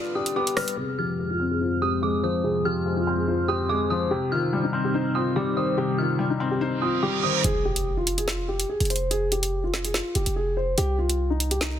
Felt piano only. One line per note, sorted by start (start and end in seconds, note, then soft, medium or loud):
0.00 0.15 D3 loud
0.00 0.56 G3 medium
0.00 0.36 B3 medium
0.00 0.15 D4 loud
0.00 0.80 D5 medium
0.15 0.78 D4 medium
0.36 0.78 B3 loud
0.56 0.77 G3 medium
0.77 1.82 C3 medium
0.99 2.03 F3 medium
1.19 2.01 G#3 medium
1.40 1.80 C4 loud
1.61 2.65 C5 medium
1.82 2.86 C4 medium
2.02 2.84 G#3 medium
2.24 2.64 F3 medium
2.44 3.49 C3 medium
2.65 3.69 F3 medium
2.86 3.68 G#3 medium
3.07 3.47 C4 medium
3.28 4.11 C5 medium
3.49 4.11 C4 medium
3.69 4.11 G#3 loud
3.90 4.11 F3 medium
4.11 5.15 C3 medium
4.32 5.36 D#3 medium
4.53 5.34 G3 medium
4.73 5.14 C4 medium
4.94 5.98 C5 medium
5.15 6.19 C4 medium
5.36 6.17 G3 medium
5.57 5.97 D#3 medium
5.77 6.82 C3 medium
5.98 7.03 D#3 medium
6.19 7.01 G3 medium
6.40 6.80 C4 medium
6.61 7.44 C5 medium
6.82 7.44 C4 medium
7.02 7.44 G3 medium
7.23 7.44 D#3 medium